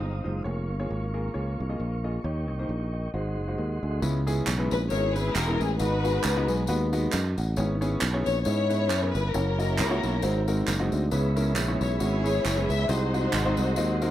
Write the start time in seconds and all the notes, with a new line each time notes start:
Already playing: G#3 C4 D#4 F4 C5 F5 D#6
0.00 G1
0.24 F#1 G#3 D#4 F4 C5
0.44 F1 A#3 F4 G#4 A#4 C#5 C#6
0.70 G1
0.80 A#3 F4 G#4 C#5
0.90 G#1
1.14 A#3 F4 G#4 A#4
1.34 C#2 A#3 F4 G#4 C#5
1.60 C2
1.69 A#3 F4 G#4 D#5
1.80 A#1
2.04 A#3 F4 G#4 D#5
2.24 D#2 D#3 A#3 D#4 G4 A#4 C#5 D#5 G5
2.49 C2
2.59 A#3 D#4 G4 C5
2.69 A#1 A#4
2.93 D#5
3.14 G#1 G#2 G#3 D#4 F#4 G#4 C5 F#5 C6
3.38 F#1
3.48 G#3 D#4 F#4 C5
3.58 D#2 A#4
3.83 D2 G#4
4.02 C#2 C#3 G#3 B3 C#4 E4 B4, tambourine
4.26 G#3 B3 C#4 E4 G#4, tambourine
4.47 B1, clap, tambourine
4.58 G#3 B3 C#4 E4 B4
4.71 A#1 B4, tambourine
4.90 G#1 G#3 B3 C#4 E4 G#4 A#4 C#5, tambourine
5.15 G#3 B3 C#4 E4 B4, tambourine
5.34 E1 A#4, clap, tambourine
5.48 G#3 B3 C#4 E4 A#4
5.60 A1 G#4, tambourine
5.79 G#1 G#2 G#3 B3 D#4 F#4 B4, tambourine
6.04 G#3 B3 D#4 F#4 G#4, tambourine
6.24 C#2, clap, tambourine
6.36 G#3 B3 D#4 F#4 B4
6.48 B1 G#5, tambourine
6.67 D#2 G#3 B3 D#4 F#4 B4 F#5, tambourine
6.93 G#3 B3 D#4 F#4 B4, tambourine
7.12 F#2 D#5, clap, tambourine
7.38 A1 F#5, tambourine
7.56 G#1 G#2 B3 C#4 E4 G#4 C#5, tambourine
7.81 B3 C#4 E4 G#4 C#5, tambourine
8.01 B1, clap, tambourine
8.13 B3 C#4 E4 G#4 C#5
8.26 A#1 C#5, tambourine
8.44 G#2 B3 C#4 E4 G#4 C#5, tambourine
8.70 B3 C#4 E4 G#4 B4, tambourine
8.90 F#2, clap, tambourine
9.02 B3 C#4 E4 G#4 A#4
9.14 G1 B4, tambourine
9.33 F#1 A#3 C#4 E4 F#4 A#4 C#5, tambourine
9.58 A#3 C#4 E4 F#4 D#5, tambourine
9.78 C#2, clap, tambourine
9.90 A#3 C#4 E4 F#4 C#5
10.03 B1, tambourine
10.22 G#1 G#2 G#3 C4 D#4 F#4 C5, tambourine
10.48 G#3 C4 D#4 F#4 A#4, tambourine
10.67 F#1, clap, tambourine
10.79 G#3 C4 D#4 F#4 D#5
10.92 D2, tambourine
11.11 C#2 C#3 G#3 B3 C#4 E4 G#4 B4 C#5 E5 B5, tambourine
11.36 G#3 B3 C#4 E4 A#4, tambourine
11.56 A#1, clap, tambourine
11.68 G#3 B3 C#4 E4 C#5
11.81 B1 C#5, tambourine
12.00 G#1 G#3 B3 C#4 E4 F#4 G#4 C#5, tambourine
12.24 G#3 B3 C#4 E4 G#4, tambourine
12.45 F#1, clap, tambourine
12.56 G#3 B3 C#4 E4 B4
12.69 C#2 E5, tambourine
12.88 C2 C3 G#3 C4 D#4 F#4 C5 D#5 F#5 C6, tambourine
13.14 G#3 C4 D#4 F#4 C5, tambourine
13.33 G#1, clap, tambourine
13.45 G#3 C4 D#4 F#4 C5
13.57 C2, tambourine
13.76 D#2 G#3 C4 D#4 F#4 D#5, tambourine
14.02 G#3 C4 D#4 F#4 A#4, tambourine